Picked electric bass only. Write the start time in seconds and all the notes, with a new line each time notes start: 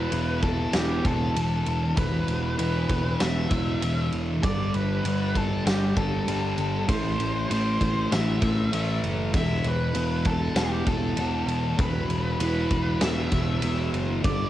0.12 E1
0.74 E1
1.04 E1
1.35 E1
1.66 E1
1.97 E1
2.29 E1
2.59 E1
2.89 E1
3.21 E1
3.51 E1
3.83 E1
4.13 E1
4.44 G1
4.75 G1
5.04 G1
5.66 G1
5.96 G1
6.28 G1
6.58 G1
6.88 A1
7.19 A1
7.51 A1
7.81 A1
8.12 A1
8.42 A1
8.73 A1
9.03 F#1
9.34 E1
9.64 E1
9.95 E1
10.56 E1
10.87 E1
11.17 E1
11.46 E1
11.79 E1
12.09 E1
12.39 E1
12.70 E1
13.01 E1
13.32 E1
13.62 E1
13.93 F#1
14.24 G1